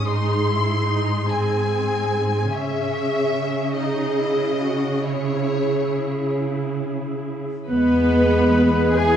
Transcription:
Already playing: G#2
0.08 D#4 G#4 C6
0.48 E4
0.88 D#4
1.29 C4 G#4 G#5
2.51 C#3 C#4 G#4 E5
3.76 D#4 D#5
4.19 E4
4.62 F#4
5.04 E4 G#4 C#5
7.68 E2 G#3 B3 G#4 B4
8.98 E4 G#4 G#5

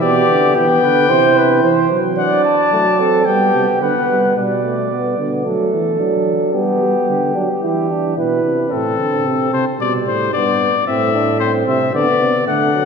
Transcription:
0.01 B2 B3 G4 D5
0.29 D3
0.55 E3 G5
0.83 D3 B4
1.09 C3 E4 C5
1.37 B4
1.63 E3 C5
1.91 F#3
2.18 D4 D5 F#5
2.45 A5
2.73 F#3 A3
2.99 C4 A4
3.25 G3 B3 G4 G5
3.55 C3
3.81 D3 B3 B4 F#5
4.09 G3
4.36 B2 G3 D5
4.64 A3
4.91 B3
5.18 D3 B3
5.45 F#3 A3 A4
5.74 E3
5.99 F#3 D4
6.54 G3 B3 G4
6.82 G3
7.09 D3
7.35 F#3 D4
7.62 E3 E4 G4
7.90 D4
8.17 B2 E4 B4
8.45 C3
8.71 A2 C4 A4
9.00 D3
9.27 C3
9.53 C3 C5
9.80 B2 G3 D5
10.06 A2 C5
10.33 G2 B3 D5
10.87 A2 C4 E5
11.14 D4
11.40 C4 C5
11.68 C3 E5
11.94 D3 B3 D5
12.21 C3
12.47 D3 A3 F#5
12.74 F#3

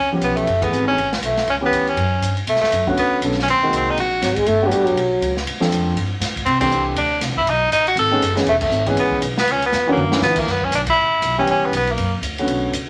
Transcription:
Already playing: C#2 C#4
0.12 F3 B3 C#4 G4
0.20 B1 B3, hi-hat pedal, ride
0.36 A3, ride
0.47 F#1, ride
0.61 E3 A3 B3 G#4, kick, ride
0.71 G#1, hi-hat pedal
0.87 C#4
0.96 A1, ride
1.13 snare, ride
1.21 B1, hi-hat pedal, ride
1.25 A3
1.37 snare, ride
1.47 C#2 C#4, ride
1.61 E3 B3 C#4 G4
1.66 B3
1.72 D2, hi-hat pedal, ride
1.87 C#4, ride
1.96 F#2, ride
2.21 G2, hi-hat pedal, ride
2.37 ride
2.47 B2 A3, ride
2.56 snare
2.61 A3, muted upright bass stroke, snare
2.71 F#2, hi-hat pedal, ride
2.87 D3 A3 B3 C#4 F#4, kick
2.97 D2 B3, ride
3.21 B1 D3 A3 B3 C#4 A4, hi-hat pedal, ride
3.32 snare
3.39 C#4, snare
3.47 D#2 C4, ride
3.63 D#3 G#3 A#3 C4 F#4
3.71 C2, hi-hat pedal, ride
3.77 C4
3.90 D#4
3.96 A#1, ride
4.00 F#4
4.21 G#1 F#3, snare, hi-hat pedal, ride
4.36 G#3, kick, ride
4.46 G1 A3, ride
4.62 A3 B3 D4 F#4 G4
4.67 F#3
4.71 A1 G3, hi-hat pedal, ride
4.85 F#3, ride
4.95 B1, ride
5.21 C#2, hi-hat pedal, ride
5.37 snare
5.46 D2, ride
5.60 F3 A3 C4 D4 A4, snare
5.70 F2, hi-hat pedal, ride
5.94 G2, ride
6.20 A2, snare, hi-hat pedal, ride
6.36 kick, ride
6.46 C3 C4, ride
6.60 E3 A3 C4 D4 G4, kick, crash
6.70 C2, hi-hat pedal
6.95 D2 D4, ride
7.21 C2, snare, hi-hat pedal, ride
7.29 A1
7.36 G1 E4, kick
7.46 B1 D#4, ride
7.71 A1 D#4, hi-hat pedal, ride
7.87 F#4, ride
7.96 G#1 A4, ride
8.11 D#3 A3 B3 C#4 G#4
8.22 F#1, hi-hat pedal, ride
8.35 E3 G#3 B3 C#4 G#4, snare, ride
8.46 E1 A3, ride
8.61 A3, kick, crash
8.69 G#1, hi-hat pedal
8.86 E3 G#3 B3 C#4 G#4, kick, ride
8.95 A1, ride
8.99 B3
9.11 kick
9.20 B1, hi-hat pedal, ride
9.38 B3, snare
9.47 C#2, ride
9.52 C#4
9.62 B3, ride
9.72 E2, snare, hi-hat pedal
9.87 E3 A#3 C#4 D4 F#4
9.92 A#3
9.96 F#2, high tom
10.10 D3 E3 A#3 C#4 D4 E4, snare
10.21 A#2 F#3 B3, snare, hi-hat pedal
10.29 E3
10.36 A#3, kick, crash
10.46 F#2, snare
10.52 B3
10.62 C#4, kick
10.71 B1 D4, hi-hat pedal, ride
10.87 E4, kick, ride
10.96 A1
11.22 B1, hi-hat pedal, ride
11.38 E3 G3 B3 C#4 G4
11.47 C#2 C#4, ride
11.65 B3
11.72 B1, hi-hat pedal, ride
11.76 B3
11.87 ride
11.91 A#3
11.98 F#2, ride
12.21 D2, hi-hat pedal, ride
12.38 D3 A3 B3 C#4 F#4, ride
12.47 B1, ride
12.72 C#2, hi-hat pedal, ride

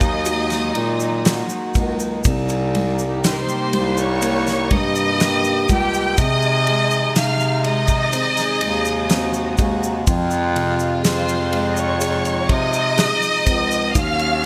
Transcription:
Already playing: D#2 D#3 F#3 A#3 D#4 F#4 D#5 D#6
0.00 kick, shaker
0.25 G#3 F#4, ride, shaker
0.50 snare, ride, shaker
0.75 A#2 A#3, ride
1.00 shaker
1.25 F#4, snare, ride, shaker
1.49 shaker
1.74 C#2 A#3, kick, ride, shaker
2.00 shaker
2.24 C2 C3 G3 A#3 D#4 G4, kick, ride, shaker
2.49 ride, shaker
2.75 G3, ride
2.99 shaker
3.24 D#4 C5 C6, snare, ride, shaker
3.31 A#4
3.39 C5 C6
3.49 shaker
3.72 C2 G3, ride
3.97 C#5 C#6, shaker
4.22 A#3, ride, shaker
4.47 snare, shaker
4.71 G2 G3 D#5 D#6, kick, ride
4.95 shaker
5.14 F#4
5.20 A#3 G4, snare, ride, shaker
5.44 shaker
5.68 C#2 G3 G4 G5, kick, ride, shaker
5.94 shaker
6.17 C3 D#3 G#3 D#4 G#4 D#5 D#6, kick, ride, shaker
6.42 shaker
6.67 G#3, ride
6.91 shaker
7.16 C3 D#4 F5 F6, snare, ride, shaker
7.40 shaker
7.64 G#3 D#5 D#6, ride
7.87 kick, shaker
8.12 C4 G#4, ride, shaker
8.37 snare, ride, shaker
8.61 D#2 G#3, ride
8.85 shaker
9.10 C4 F#4, snare, ride, shaker
9.33 shaker
9.58 D#2 G#3, kick, ride, shaker
9.83 shaker
10.07 F2 F3 F4, kick, ride, shaker
10.31 shaker
10.56 C3, ride
10.79 shaker
11.03 F2 G#4 C5 C6, snare, ride, shaker
11.29 shaker
11.52 G#3, ride
11.71 D#5
11.77 C#5 C#6, shaker
12.00 D#4 G#4, ride, shaker
12.25 ride, shaker
12.49 C3 C4 D#5 D#6, kick, ride
12.73 shaker
12.97 G#4, snare, ride, shaker
13.22 shaker
13.45 C#2 C4, kick, ride, shaker
13.71 shaker
13.95 D#2 D#3 F#3 A#3 C#4 F#4 F5 F6, kick, ride, shaker
14.19 ride, shaker

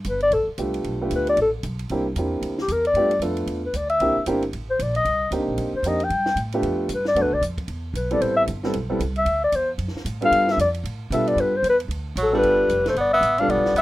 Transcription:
0.04 G1, hi-hat pedal, ride
0.09 B4
0.20 D5, ride
0.31 A1 A4, ride
0.47 muted upright bass stroke
0.58 C2 A3 B3 D4 F4 G4, hi-hat pedal, ride
0.74 ride
0.84 B1, ride
1.01 A3 B3 D4 F4 G4
1.11 D2, hi-hat pedal, ride
1.16 B4
1.27 D5, ride
1.37 A1, ride
1.42 A4
1.63 B1, hi-hat pedal, ride
1.79 ride
1.89 C2 A#3 C4 D4 E4 G4, ride
2.15 E2 A#3 C4 D4 E4 G4, hi-hat pedal, ride
2.41 D2, ride
2.58 G4, snare
2.68 E2 A#4, hi-hat pedal, ride
2.85 D5, ride
2.94 G2 A3 B3 D4 F4 G4, ride
3.11 ride
3.19 F2 A3 B3 D4 F4 A4, hi-hat pedal, ride
3.37 ride
3.46 E2, ride
3.66 B4
3.73 D2 D5, hi-hat pedal, ride
3.89 E5, ride
4.00 C2 A#3 C4 D4 E4 G4, ride
4.17 muted upright bass stroke
4.26 G1 A#3 C4 D4 E4 G4, hi-hat pedal, ride
4.42 ride
4.53 A1, ride
4.70 C5
4.79 A#1 D5, hi-hat pedal, ride
4.95 D#5, ride
5.05 C2, ride
5.31 D2 A#3 C4 D4 D#4 G4, hi-hat pedal, ride
5.40 C2
5.49 A#1
5.57 D#2, ride
5.73 C5, muted upright bass stroke
5.83 F2 A#3 C4 D4 D#4 G4, hi-hat pedal, ride
5.88 D#5
6.00 G5, ride
6.10 G2, ride
6.26 snare
6.36 A2, hi-hat pedal, ride
6.52 A3 B3 D4 F4 G4, ride
6.62 F2, ride
6.89 G2, hi-hat pedal, ride
6.95 B4
7.05 D5, snare
7.15 F#2 A3 B3 D4 F#4 A4, ride
7.22 D2 B4
7.33 B1 D5
7.41 F2, hi-hat pedal, ride
7.58 kick, ride
7.68 E2, ride
7.94 B1 B4, hi-hat pedal, ride
8.11 G3 B3 C4 E4 A4 D5, ride
8.21 A1 C5, ride
8.36 E5
8.47 G1, hi-hat pedal, ride
8.63 G3 B3 C4 E4 A4, snare
8.73 B1, ride
8.89 G3 B3 C4 E4 A4
8.99 C2, hi-hat pedal, ride
9.16 E5, ride
9.25 D2, ride
9.44 D5
9.52 E2 C5, hi-hat pedal, ride
9.78 F#2, ride
9.88 snare
9.95 muted upright bass stroke, snare
10.05 A2, hi-hat pedal, ride
10.21 G3 B3 D4 F4 A4, ride
10.25 F5
10.31 G2, ride
10.48 E5, snare
10.57 F2 D5, hi-hat pedal, ride
10.74 ride
10.84 A2, ride
11.10 B2 G3 B3 D4 F4 A4 E5, hi-hat pedal, ride
11.27 D5, ride
11.36 G2, ride
11.41 B4
11.57 C5
11.63 E2, hi-hat pedal, ride
11.69 B4
11.80 ride
11.88 D2, ride
12.16 A1 F#3, hi-hat pedal, ride
12.23 A4
12.33 G3 B3 D4 F4 A4
12.38 G1 B4
12.43 ride
12.69 F1, hi-hat pedal, ride
12.86 A3 C5, snare, ride
12.95 G1 B3, ride
13.00 D5
13.13 B3 E5
13.21 A1, hi-hat pedal, ride
13.38 G3 B3 D4 F4 A4 F5, ride
13.48 B1 B3 D5, ride
13.57 G1
13.65 F1, snare
13.74 D2 B3, hi-hat pedal, ride
13.78 E5

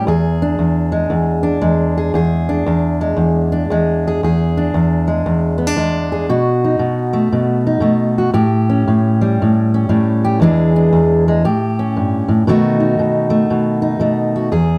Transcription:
0.07 E2 G#4
0.42 D4
0.59 E2
0.92 G#3
1.10 E2
1.43 D4
1.61 E2 G#3
1.97 G#4
2.14 E2 G#4
2.49 D4
2.66 E2
3.01 G#3
3.17 E2
3.52 D4
3.70 E2 G#3
4.07 G#4
4.23 E2 G#4
4.57 D4
4.74 E2
5.08 G#3
5.26 E2
5.58 B3
5.67 D4
5.76 E2 G#3
6.12 G#4
6.29 B2 F#4
6.64 D#4
6.79 B2
7.13 A3
7.32 B2
7.67 D#4
7.80 B2 A3
8.18 F#4
8.34 A2 G4
8.69 C#4
8.88 A2
9.21 G3
9.42 A2
9.74 C#4
9.89 A2 G3
10.24 G4
10.40 E2 E3 G#3 D4 G#4
10.76 D4
10.93 E2
11.28 G#3
11.45 A2 G4
11.79 C#4
11.96 G2
12.28 A2
12.47 B2 D#3 A3 D#4 F#4
12.80 D#4
12.99 B2
13.30 A3
13.50 B2
13.82 D#4
14.00 B2 A3
14.36 F#4
14.52 E2 G#4

